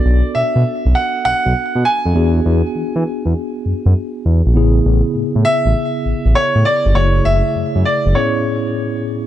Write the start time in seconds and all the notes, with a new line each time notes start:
Already playing: B3 D4 F#4 A4 D5
0.05 B1
0.35 B2 E5
0.56 B2
0.85 B1
0.95 F#5
1.25 B1 F#5
1.45 B1
1.75 B2
1.85 G#5
2.05 F2
2.15 E2 B3 D4 F#4 G#4
2.45 E2
2.75 E3
2.96 E3
3.26 E2
3.66 F#2
3.86 F#2
4.25 E2
4.46 A#1
4.54 A1 C#3 B3 E4 G#4
4.86 A1
5.15 A2
5.35 A2
5.45 E5
5.65 A1
6.05 A1
6.25 A1
6.35 C#5
6.55 A2
6.65 D5
6.85 G1
6.94 F#1 C#3 A3 E4 G#4 C#5
7.25 F#1 E5
7.56 F#2
7.75 F#2
7.85 D5
8.05 F#1
8.15 A2 B3 C#4 E4 G#4 C#5